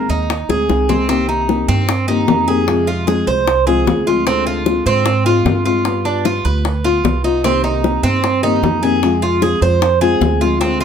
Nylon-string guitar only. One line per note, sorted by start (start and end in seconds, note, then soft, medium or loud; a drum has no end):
0.00 0.28 D#3 soft
0.00 0.29 G#3 soft
0.00 0.29 C4 medium
0.00 0.29 G#4 soft
0.29 muted nylon-string guitar stroke medium
0.49 0.68 G#3 medium
0.49 0.69 C4 medium
0.49 0.68 G#4 medium
0.69 0.88 D#3 medium
0.69 0.89 G#3 soft
0.69 0.89 C4 soft
0.69 0.88 G#4 medium
0.89 1.09 G#3 medium
0.89 1.09 C4 medium
0.89 1.08 G#4 medium
1.09 1.48 C3 medium
1.09 1.48 D#3 medium
1.09 1.48 A#3 medium
1.09 1.49 C4 medium
1.09 1.49 G4 medium
1.49 1.88 D#3 medium
1.49 1.88 A#3 medium
1.49 1.88 C4 medium
1.49 1.88 G4 medium
1.89 muted nylon-string guitar stroke medium
2.08 2.27 D#3 medium
2.08 2.28 A#3 medium
2.08 2.28 C4 medium
2.08 2.27 G4 medium
2.28 2.47 D#3 medium
2.28 2.48 A#3 medium
2.28 2.47 C4 medium
2.28 2.47 G4 medium
2.48 2.67 D#3 medium
2.48 2.68 A#3 medium
2.48 2.67 C4 medium
2.48 2.67 G4 medium
2.67 3.06 C3 medium
2.67 3.06 F3 medium
2.67 3.06 G#3 medium
2.67 3.07 C4 medium
2.67 3.07 F4 medium
3.07 3.46 F3 medium
3.07 3.46 G#3 medium
3.07 3.46 C4 medium
3.07 3.46 F4 medium
3.47 muted nylon-string guitar stroke medium
3.67 3.85 F3 medium
3.67 3.86 G#3 medium
3.67 3.86 C4 medium
3.67 3.86 F4 medium
3.86 4.06 F3 medium
3.86 4.06 G#3 medium
3.86 4.06 C4 medium
3.86 4.06 F4 medium
4.07 4.26 F3 medium
4.07 4.26 G#3 medium
4.07 4.26 C4 medium
4.07 4.26 F4 medium
4.26 4.65 D3 medium
4.26 4.66 G#3 medium
4.26 4.66 C4 medium
4.26 4.66 F4 medium
4.66 5.05 D3 soft
4.66 5.06 G#3 medium
4.66 5.06 C4 medium
4.66 5.06 F4 medium
5.06 muted nylon-string guitar stroke medium
5.26 5.46 G#3 medium
5.26 5.46 C4 medium
5.26 5.45 F4 medium
5.46 5.65 D3 soft
5.46 5.65 G#3 medium
5.46 5.66 C4 medium
5.46 5.64 F4 medium
5.66 5.85 G#3 medium
5.66 5.85 C4 medium
5.66 5.85 F4 medium
5.85 6.24 G3 medium
5.85 6.25 B3 medium
5.85 6.25 F4 medium
6.25 6.64 G3 soft
6.25 6.64 B3 soft
6.25 6.65 F4 medium
6.65 muted nylon-string guitar stroke medium
6.85 7.04 B3 medium
6.85 7.04 F4 medium
7.04 7.23 G3 soft
7.04 7.24 B3 medium
7.04 7.23 F4 medium
7.24 7.44 B3 medium
7.24 7.43 F4 medium
7.44 7.83 C3 medium
7.44 7.82 D#3 medium
7.44 7.83 A#3 medium
7.44 7.83 C4 medium
7.44 7.84 G4 medium
7.83 8.22 D#3 medium
7.83 8.22 A#3 soft
7.83 8.22 C4 medium
7.83 8.22 G4 medium
8.23 muted nylon-string guitar stroke medium
8.43 8.61 D#3 medium
8.43 8.62 A#3 medium
8.43 8.62 C4 medium
8.43 8.62 G4 medium
8.62 8.82 D#3 medium
8.62 8.82 A#3 medium
8.62 8.82 C4 medium
8.62 8.81 G4 medium
8.82 9.02 D#3 medium
8.82 9.02 A#3 medium
8.82 9.02 C4 medium
8.82 9.01 G4 medium
9.02 9.41 C3 medium
9.02 9.41 F3 medium
9.02 9.42 G#3 medium
9.02 9.42 C4 medium
9.02 9.42 F4 medium
9.42 9.81 F3 soft
9.42 9.81 G#3 soft
9.42 9.81 C4 medium
9.42 9.81 F4 medium
9.82 muted nylon-string guitar stroke medium
10.01 10.20 F3 medium
10.01 10.20 G#3 medium
10.01 10.21 C4 medium
10.01 10.20 F4 medium
10.21 10.40 F3 medium
10.21 10.40 G#3 medium
10.21 10.40 C4 medium
10.21 10.40 F4 medium
10.41 10.61 F3 medium
10.41 10.60 G#3 medium
10.41 10.60 C4 medium
10.41 10.60 F4 medium
10.61 10.84 D3 medium
10.61 10.84 G#3 medium
10.61 10.84 C4 medium
10.61 10.84 F4 medium